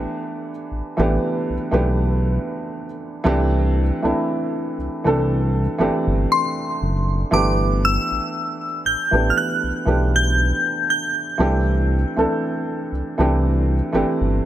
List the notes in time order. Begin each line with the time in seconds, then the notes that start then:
Already playing: E3 A3 B3 D4 G4
0.71 A1
0.97 A1 E3 A3 B3 D4 G4
1.49 B1
1.71 B1 E3 A3 B3 D4 G4
3.24 C2 E3 A3 C4 D4 G4
4.02 C2 E3 A3 C4 D4 E4
4.78 C2
5.04 C2 E3 A3 C4 D4 A4
5.78 G1 E3 A3 C4 D4 G4
6.07 G1
6.32 C6
6.81 F#1
7.31 G1 E3 A3 B3 D4 G4 D6
7.85 E6
8.11 A1
8.85 A1 G6
9.11 A1 E3 A3 B3 D4 G4
9.30 F6
9.38 F#6
9.63 B1
9.85 B1 E3 A3 B3 D4 G4
10.16 G6
10.90 G6
11.38 C2 E3 A3 C4 D4 G4
12.16 C2 E3 A3 C4 D4 A4
12.92 C2
13.18 C2 E3 A3 C4 D4 G4
13.93 G1 E3 A3 C4 D4 G4
14.21 G1